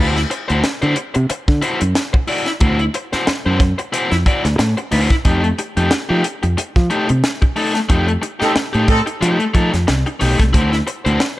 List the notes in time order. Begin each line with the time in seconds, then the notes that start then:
Already playing: D2 E4
0.00 F#4 C5
0.16 muted overdriven electric guitar stroke, snare, closed hi-hat
0.30 muted overdriven electric guitar stroke, closed hi-hat
0.48 D2 E4 F#4 C5, closed hi-hat
0.63 muted overdriven electric guitar stroke, snare, closed hi-hat
0.82 D3 E4 F#4 C5, closed hi-hat
0.96 muted overdriven electric guitar stroke, closed hi-hat
1.14 C3, muted overdriven electric guitar stroke, closed hi-hat
1.29 muted overdriven electric guitar stroke, muted fingered electric bass stroke, closed hi-hat
1.48 D3, kick, snare
1.61 E4 F#4 C5, closed hi-hat
1.81 F#2, muted overdriven electric guitar stroke, closed hi-hat
1.95 snare, closed hi-hat
2.13 muted overdriven electric guitar stroke, kick
2.28 E4 F#4 D5, open hi-hat
2.46 muted overdriven electric guitar stroke, snare, closed hi-hat
2.60 D2 E4 F#4 C5, kick, closed hi-hat
2.79 muted overdriven electric guitar stroke, closed hi-hat
2.94 muted overdriven electric guitar stroke, closed hi-hat
3.13 E4 F#4 C5, muted fingered electric bass stroke, snare, closed hi-hat
3.27 muted fingered electric bass stroke, muted overdriven electric guitar stroke, snare, closed hi-hat
3.46 F#2 E4 F#4 C5
3.60 muted overdriven electric guitar stroke, kick, snare, closed hi-hat
3.78 muted overdriven electric guitar stroke, closed hi-hat
3.93 E4 F#4 C5, closed hi-hat
4.11 F2, muted overdriven electric guitar stroke, snare, closed hi-hat
4.26 E4 F#4 D5, kick, closed hi-hat
4.45 D2, muted overdriven electric guitar stroke, snare, closed hi-hat
4.58 A2, muted overdriven electric guitar stroke, snare, closed hi-hat
4.77 muted overdriven electric guitar stroke, closed hi-hat
4.92 D2 E4 F#4 C5, open hi-hat
5.10 muted overdriven electric guitar stroke, kick, snare, closed hi-hat
5.25 F2 A3 D#4 G4, kick, closed hi-hat
5.44 muted overdriven electric guitar stroke, closed hi-hat
5.59 muted overdriven electric guitar stroke, closed hi-hat
5.77 F2 A3 D#4 G4, closed hi-hat
5.91 muted overdriven electric guitar stroke, muted fingered electric bass stroke, snare, closed hi-hat
6.09 F3 A3 D#4 G4
6.24 muted overdriven electric guitar stroke, closed hi-hat
6.43 F2, muted overdriven electric guitar stroke, closed hi-hat
6.57 muted overdriven electric guitar stroke, muted fingered electric bass stroke, closed hi-hat
6.76 F3, kick, snare
6.90 A3 D#4 G4, closed hi-hat
7.08 C3, muted overdriven electric guitar stroke, closed hi-hat
7.24 snare, closed hi-hat
7.42 muted overdriven electric guitar stroke, kick, closed hi-hat
7.56 A3 D#4 A4, open hi-hat
7.75 muted overdriven electric guitar stroke, snare, closed hi-hat
7.89 F2 A3 D#4 G4, kick, closed hi-hat
8.08 muted overdriven electric guitar stroke, closed hi-hat
8.22 muted overdriven electric guitar stroke, closed hi-hat
8.40 A3 C4 D#4 G4 A4, muted fingered electric bass stroke, snare, closed hi-hat
8.55 muted overdriven electric guitar stroke, muted fingered electric bass stroke, snare, closed hi-hat
8.73 A2 A3 D#4 G4, closed hi-hat
8.88 A3 C4 D#4 A4, muted overdriven electric guitar stroke, kick, snare, closed hi-hat
9.06 muted overdriven electric guitar stroke, closed hi-hat
9.21 F3 A3 D#4 G4, closed hi-hat
9.39 muted overdriven electric guitar stroke, closed hi-hat
9.54 F3 A3 D#4 A4, kick, closed hi-hat
9.73 F2, muted overdriven electric guitar stroke, snare, closed hi-hat
9.87 C2, muted overdriven electric guitar stroke, snare, closed hi-hat
10.06 muted overdriven electric guitar stroke, closed hi-hat
10.20 B1 A3 D#4 G4, open hi-hat
10.38 C2, muted overdriven electric guitar stroke, kick, snare, closed hi-hat
10.53 D2 E4 F#4 C5, kick, closed hi-hat
10.72 muted overdriven electric guitar stroke, snare, closed hi-hat
10.87 muted overdriven electric guitar stroke, closed hi-hat
11.05 D2 E4 F#4 C5, closed hi-hat
11.20 muted overdriven electric guitar stroke, muted fingered electric bass stroke, snare, closed hi-hat